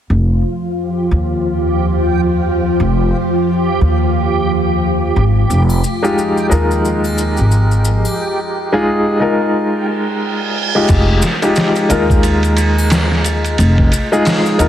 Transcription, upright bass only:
0, 0, Header, 1, 2, 480
1, 0, Start_track
1, 0, Key_signature, -4, "minor"
1, 0, Tempo, 674157
1, 73, Time_signature, 4, 2, 24, 8
1, 10455, End_track
2, 0, Start_track
2, 0, Title_t, "Upright bass"
2, 0, Program_c, 0, 32
2, 71, Note_on_c, 0, 29, 81
2, 288, Note_off_c, 0, 29, 0
2, 793, Note_on_c, 0, 39, 77
2, 1974, Note_off_c, 0, 39, 0
2, 1992, Note_on_c, 0, 29, 85
2, 2209, Note_off_c, 0, 29, 0
2, 2714, Note_on_c, 0, 39, 77
2, 3655, Note_off_c, 0, 39, 0
2, 3675, Note_on_c, 0, 32, 87
2, 3891, Note_off_c, 0, 32, 0
2, 3915, Note_on_c, 0, 29, 86
2, 4130, Note_off_c, 0, 29, 0
2, 4635, Note_on_c, 0, 39, 76
2, 5229, Note_off_c, 0, 39, 0
2, 5259, Note_on_c, 0, 32, 77
2, 5710, Note_off_c, 0, 32, 0
2, 7754, Note_on_c, 0, 29, 90
2, 7970, Note_off_c, 0, 29, 0
2, 8473, Note_on_c, 0, 39, 82
2, 9654, Note_off_c, 0, 39, 0
2, 9674, Note_on_c, 0, 29, 95
2, 9890, Note_off_c, 0, 29, 0
2, 10390, Note_on_c, 0, 39, 80
2, 10455, Note_off_c, 0, 39, 0
2, 10455, End_track
0, 0, End_of_file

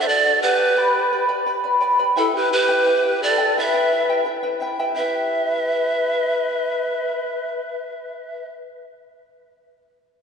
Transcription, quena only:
0, 0, Header, 1, 2, 480
1, 0, Start_track
1, 0, Key_signature, 1, "minor"
1, 0, Tempo, 695249
1, 528, Time_signature, 2, 2, 24, 8
1, 7057, End_track
2, 0, Start_track
2, 0, Title_t, "Quena"
2, 0, Program_c, 0, 77
2, 14, Note_on_c, 0, 72, 64
2, 51, Note_on_c, 0, 69, 80
2, 62, Note_off_c, 0, 72, 0
2, 288, Note_off_c, 0, 69, 0
2, 292, Note_on_c, 0, 67, 90
2, 987, Note_off_c, 0, 67, 0
2, 1504, Note_on_c, 0, 64, 75
2, 1611, Note_off_c, 0, 64, 0
2, 1622, Note_on_c, 0, 67, 72
2, 1731, Note_off_c, 0, 67, 0
2, 1737, Note_on_c, 0, 67, 87
2, 2223, Note_on_c, 0, 69, 92
2, 2233, Note_off_c, 0, 67, 0
2, 2460, Note_off_c, 0, 69, 0
2, 2468, Note_on_c, 0, 71, 93
2, 2915, Note_off_c, 0, 71, 0
2, 3420, Note_on_c, 0, 71, 85
2, 5858, Note_off_c, 0, 71, 0
2, 7057, End_track
0, 0, End_of_file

